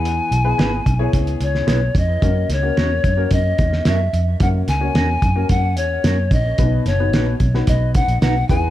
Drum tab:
HH |x-x-x-x-xxx-x-x-|x-x-x-x-x-x-x-x-|x-x-x-x-x-x-x-x-|x-x-x-x-x-xxx-x-|
SD |----o------oo---|--o-o------oo---|--o-o-------o---|--o-o--o----o---|
BD |------o-o-----o-|o-----o-o-o-----|o-----o-o-----o-|o-----o-o-o---o-|